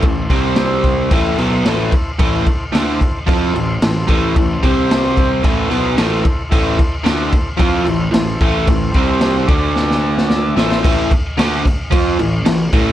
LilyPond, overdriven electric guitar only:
\new Staff \with { instrumentName = "Overdriven electric guitar" } { \clef bass \time 4/4 \key a \minor \tempo 4 = 111 <a, e>8 <c g c'>4. <a, e a>8 <b, fis b>8 <a, e a>8 r8 | <a, e a>8 r8 <d a d'>8 r8 <f c' f'>8 <a, e>8 <a, e>8 <a, e a>8 | <a, e>8 <c g c'>4. <a, e a>8 <b, fis b>8 <a, e a>8 r8 | <a, e a>8 r8 <d a d'>8 r8 <f c' f'>8 <a, e>8 <a, e>8 <a, e a>8 |
<a, e>8 <c g c'>4 <d a d'>2 <a, e a>8 | <a, e a>8 r8 <d a d'>8 r8 <f c' f'>8 <a, e>8 <a, e>8 <a, e a>8 | }